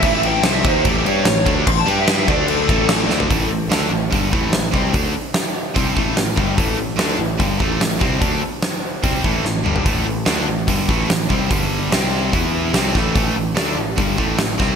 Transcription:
<<
  \new Staff \with { instrumentName = "Lead electric guitar" } { \time 4/4 \key g \lydian \tempo 4 = 146 e''8 g''8 e''8 c''8 g'8 cis''4 r8 | c'''16 a''16 g''16 e''16 g''16 e''16 d''8 a'4 r4 | r1 | r1 |
r1 | r1 | r1 | r1 |
r1 | }
  \new Staff \with { instrumentName = "Distorted electric guitar" } { \clef bass \time 4/4 \key g \lydian <a, e a>4 <c g c'>8 <dis bes dis'>8 <a, e a>8 <g d' g'>8 <a, e>8 <d a d'>8 | <a, e>8 <g d' g'>4 <d a d'>4 <a, e a>4 <d a d'>8 | <a, e a>8 <a, e>8 <d a d'>8 <a, e>8 <g, d g>8 <a, e a>8 <a, e>8 <c g c'>8 | <d a d'>8 r4. <c g c'>8 <a, e a>8 <a, e>8 <g, d g>8 |
<a, e a>8 <a, e>8 <d a d'>8 <a, e>8 <g, d g>8 <a, e a>8 <a, e>8 <c g c'>8 | <d a d'>8 r4. <c g c'>8 <a, e a>8 <a, e>8 <g, d g>8 | <a, e a>8 <a, e>8 <d a d'>8 <a, e>8 <g, d g>8 <a, e a>8 <a, e>8 <c g c'>8 | <g, d g>4 <c g c'>4 <e b e'>4 <c g c'>8 <a, e a>8 |
<a, e a>8 <a, e>8 <d a d'>8 <a, e>8 <g, d g>8 <a, e a>8 <a, e>8 <c g c'>8 | }
  \new Staff \with { instrumentName = "Overdriven electric guitar" } { \clef bass \time 4/4 \key g \lydian <a, e a>4 <c g c'>8 <dis bes dis'>8 <a, e a>8 <g d' g'>8 <a, e>8 <d a d'>8 | <a, e>8 <g d' g'>4 <d a d'>4 <a, e a>4 <d a d'>8 | <a, e a>8 <a, e>8 <d a d'>8 <a, e>8 <g, d g>8 <a, e a>8 <a, e>8 <c g c'>8 | <d a d'>8 r4. <c g c'>8 <a, e a>8 <a, e>8 <g, d g>8 |
<a, e a>8 <a, e>8 <d a d'>8 <a, e>8 <g, d g>8 <a, e a>8 <a, e>8 <c g c'>8 | <d a d'>8 r4. <c g c'>8 <a, e a>8 <a, e>8 <g, d g>8 | <a, e a>8 <a, e>8 <d a d'>8 <a, e>8 <g, d g>8 <a, e a>8 <a, e>8 <c g c'>8 | <g, d g>4 <c g c'>4 <e b e'>4 <c g c'>8 <a, e a>8 |
<a, e a>8 <a, e>8 <d a d'>8 <a, e>8 <g, d g>8 <a, e a>8 <a, e>8 <c g c'>8 | }
  \new Staff \with { instrumentName = "Overdriven electric guitar" } { \clef bass \time 4/4 \key g \lydian <a, e a>4 <c g c'>8 <dis bes dis'>8 <a, e a>8 <g d' g'>8 <a, e>8 <d a d'>8 | <a, e>8 <g d' g'>4 <d a d'>4 <a, e a>4 <d a d'>8 | <a, e a>8 <a, e>8 <d a d'>8 <a, e>8 <g, d g>8 <a, e a>8 <a, e>8 <c g c'>8 | <d a d'>8 r4. <c g c'>8 <a, e a>8 <a, e>8 <g, d g>8 |
<a, e a>8 <a, e>8 <d a d'>8 <a, e>8 <g, d g>8 <a, e a>8 <a, e>8 <c g c'>8 | <d a d'>8 r4. <c g c'>8 <a, e a>8 <a, e>8 <g, d g>8 | <a, e a>8 <a, e>8 <d a d'>8 <a, e>8 <g, d g>8 <a, e a>8 <a, e>8 <c g c'>8 | <g, d g>4 <c g c'>4 <e b e'>4 <c g c'>8 <a, e a>8 |
<a, e a>8 <a, e>8 <d a d'>8 <a, e>8 <g, d g>8 <a, e a>8 <a, e>8 <c g c'>8 | }
  \new Staff \with { instrumentName = "Picked electric bass" } { \clef bass \time 4/4 \key g \lydian a,,4 c,8 dis,8 a,,8 g,8 a,,8 d,8 | a,,8 g,4 d,4 a,,4 d,8 | a,,8 a,,8 d,8 a,,8 g,,8 a,,8 a,,8 c,8 | d,8 r4. c,8 a,,8 a,,8 g,,8 |
a,,8 a,,8 d,8 a,,8 g,,8 a,,8 a,,8 c,8 | d,8 r4. c,8 a,,8 a,,8 g,,8 | a,,8 a,,8 d,8 a,,8 g,,8 a,,8 a,,8 c,8 | g,,4 c,4 e,4 c,8 a,,8 |
a,,8 a,,8 d,8 a,,8 g,,8 a,,8 a,,8 c,8 | }
  \new DrumStaff \with { instrumentName = "Drums" } \drummode { \time 4/4 <cymc bd>8 cymc8 <cymc sn>8 <cymc bd>8 <cymc bd>8 cymc8 <cymc sn>8 <cymc bd>8 | <cymc bd>8 cymc8 <cymc sn>8 <cymc bd>8 cymc8 <cymc bd>8 <cymc sn>8 sn16 tomfh16 | <hho bd>4 <hho sn>4 <hho bd>8 bd8 <hho sn>8 bd8 | <hho bd>4 <hho sn>4 <hho bd>8 bd8 <hho sn>8 bd8 |
<hho bd>4 <hho sn>4 <hho bd>8 bd8 <hho sn>8 bd8 | <hho bd>4 <hho sn>4 <hho bd>8 bd8 sn8 toml16 tomfh16 | <hho bd>4 <hho sn>4 <hho bd>8 bd8 <hho sn>8 bd8 | <hho bd>4 <hho sn>4 <hho bd>4 <hho sn>8 <bd sn>8 |
<hho bd>4 <hho sn>4 <hho bd>8 bd8 <hho sn>8 <bd sn>8 | }
>>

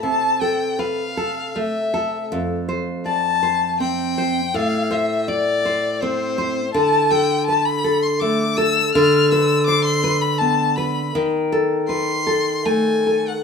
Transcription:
<<
  \new Staff \with { instrumentName = "Violin" } { \time 3/4 \key a \minor \tempo 4 = 81 a''8 g''8 f''4 e''4 | r4 a''4 g''4 | f''8 e''8 d''4 c''4 | a''8 g''8 a''16 b''8 c'''16 d'''8 e'''8 |
f'''8 e'''8 d'''16 c'''8 b''16 a''8 b''8 | r4 bis''4 gis''8. fis''16 | }
  \new Staff \with { instrumentName = "Nylon-string guitar" } { \time 3/4 \key a \minor c8 a'8 b'8 a'8 a8 a'8 | f,8 c''8 d''8 c''8 c'8 c''8 | a,8 c''8 d''8 c''8 c'8 c''8 | d8 a'8 b'8 a'8 a8 a'8 |
d8 b'8 c''8 b'8 b8 b'8 | dis8 a'8 b'8 a'8 a8 a'8 | }
>>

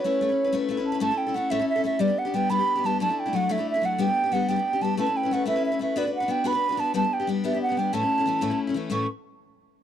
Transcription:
<<
  \new Staff \with { instrumentName = "Flute" } { \time 6/8 \key a \mixolydian \tempo 4. = 122 cis''2~ cis''8 a''8 | a''8 g''8 fis''8 e''8 e''8 e''8 | d''8 fis''8 g''8 b''4 a''8 | a''16. a''32 g''8 fis''8 e''8 e''8 fis''8 |
g''4 fis''8 g''4 a''8 | a''8 g''8 fis''8 e''8 e''8 e''8 | d''8 fis''8 g''8 b''4 a''8 | a''8 g''8 r8 e''8 fis''8 g''8 |
a''2 r4 | cis'''8 r2 r8 | }
  \new Staff \with { instrumentName = "Steel-string acoustic guitar" } { \time 6/8 \key a \mixolydian <a cis' e' b'>8 <a cis' e' b'>16 <cis' e' b'>8 <cis' e' b'>16 <a cis' e' b'>8 <a cis' e' b'>16 <cis' e' b'>8 <cis' e' b'>16 | <a, a cis' e' a'>16 <cis' e' a'>8 <cis' e' a'>16 <a cis' e' a'>8 <a, a cis' e' a'>16 <cis' e' a'>8 <cis' e' a'>16 <a cis' e' a'>8 | <g b d' g'>16 <b d' g'>8 <b d' g'>16 <g b d' g'>8 <g b d' g'>16 <b d' g'>8 <b d' g'>16 <g b d' g'>8 | <fis a d' e'>16 <a d' e'>8 <a d' e'>16 <fis a d' e'>8 <fis a d' e'>16 <a d' e'>8 <a d' e'>16 <fis a d' e'>8 |
<g b d' g'>16 <b d' g'>8 <b d' g'>16 <g b d' g'>8 <g b d' g'>16 <b d' g'>8 <b d' g'>16 <g b d' g'>8 | <a cis' e' b'>16 <cis' e' b'>8 <cis' e' b'>16 <a cis' e' b'>8 <a cis' e' b'>16 <cis' e' b'>8 <cis' e' b'>16 <a cis' e' b'>8 | <b d' fis' b'>16 <d' fis' b'>8 <d' fis' b'>16 <b d' fis' b'>8 <b d' fis' b'>16 <d' fis' b'>8 <d' fis' b'>16 <b d' fis' b'>8 | <g b d' g'>16 <b d' g'>8 <b d' g'>16 <g b d' g'>8 <g b d' g'>16 <b d' g'>8 <b d' g'>16 <g b d' g'>8 |
<a, e a cis' e'>16 <a cis' e'>8 <a cis' e'>16 <e a cis' e'>8 <a, e a cis' e'>16 <a cis' e'>8 <a cis' e'>16 <e a cis' e'>8 | <a, e a cis' e'>8 r2 r8 | }
>>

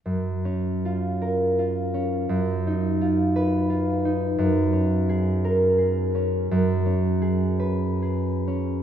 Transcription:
\new Staff \with { instrumentName = "Harp" } { \time 6/8 \key fis \major \tempo 4. = 56 << { r4. ais'4.~ | ais'4. b'4. | r4. ais'4.~ | ais'4. b'4. | } \\ { fis,8 cis'8 eis'4 eis'8 cis'8 | fis,8 dis'8 eis'4 eis'8 dis'8 | fis,8 cis'8 gis'4 gis'8 cis'8 | fis,8 cis'8 gis'4 gis'8 cis'8 | } >> }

